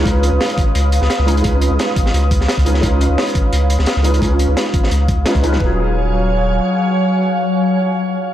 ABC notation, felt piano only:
X:1
M:4/4
L:1/8
Q:"Swing 16ths" 1/4=173
K:Ebm
V:1 name="Felt piano"
[A,DEFc]6- [A,DEFc] [A,DEFc] | [A,DEFc]6- [A,DEFc] [A,DEFc] | [A,DEFc]6- [A,DEFc] [A,DEFc] | [A,DEFc]6 [A,DEFc] [A,DEFc] |
[G,DEFA]8- | [G,DEFA]8 |]